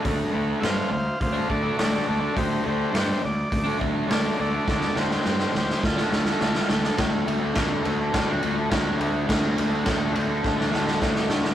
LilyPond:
<<
  \new Staff \with { instrumentName = "Transistor combo organ" } { \time 4/4 \key d \minor \tempo 4 = 104 r4 <c'' e'' f''>8 <c'' f''>8 <c'' f''>8 <a' d''>8 <a' d''>8 <a' d''>8 | <g' c''>8 <g' c''>8 <g' c''>8 d''4 r8 <a' cis'' d''>8 <a' d''>8 | <a' d''>8 <g' c''>8 <g' c''>8 <g' c''>8 <f' a'>8 <f' a'>8 <f' a'>8 a'8 | r1 |
r1 | }
  \new Staff \with { instrumentName = "Distorted electric guitar" } { \time 4/4 \key d \minor <d a d'>8 <d a d'>8 <d a d'>16 <a d'>8. r16 <a d'>16 <d a d'>16 <a d'>16 <d a d'>16 <a d'>16 <d a d'>16 <a d'>16 | <d a d'>8 <d a d'>8 <d a d'>16 <a d'>8. r16 <a d'>16 <d a d'>16 <a d'>16 <d a d'>16 <a d'>16 <d a d'>16 <a d'>16 | <d a d'>8 <d a d'>8 <d a d'>16 <a d'>8. r16 <a d'>16 <d a d'>16 <a d'>16 <d a d'>16 <a d'>16 <d a d'>16 <a d'>16 | <d a d'>8. <a d'>16 <d a d'>16 <a d'>16 <d a d'>8. <a d'>16 <d a d'>8 <d a d'>8 <d a d'>8 |
<d a d'>8. <a d'>16 <d a d'>16 <a d'>16 <d a d'>8. <a d'>16 <d a d'>8 <d a d'>8 <d a d'>8 | }
  \new Staff \with { instrumentName = "Fingered electric bass" } { \clef bass \time 4/4 \key d \minor d,8 d,8 g,8 d,8 d,8 d,8 d,8 d,8 | d,8 d,8 g,8 d,8 d,8 d,8 d,8 d,8 | d,8 d,8 g,8 d,8 d,8 d,8 d,8 d,8 | d,8 d,8 d,8 d,8 d,8 d,8 d,4 |
d,8 d,8 d,8 d,8 d,8 d,8 d,4 | }
  \new DrumStaff \with { instrumentName = "Drums" } \drummode { \time 4/4 <hho bd>4 <hho sn>4 <hho bd>8 bd8 <hho sn>4 | <hho bd>4 <hho sn>4 <hho bd>8 bd8 <hho sn>4 | <bd sn>16 sn16 sn16 sn16 sn16 sn16 sn16 sn16 <bd sn>16 sn16 sn16 sn16 sn16 sn16 sn16 sn16 | <bd cymr sn>8 cymr8 <bd cymr sn>8 cymr8 <bd cymr sn>8 cymr8 <bd cymr sn>8 cymr8 |
<bd cymr sn>8 cymr8 <bd cymr sn>8 cymr8 <bd sn>16 sn16 sn16 sn16 <bd sn>16 sn16 sn16 sn16 | }
>>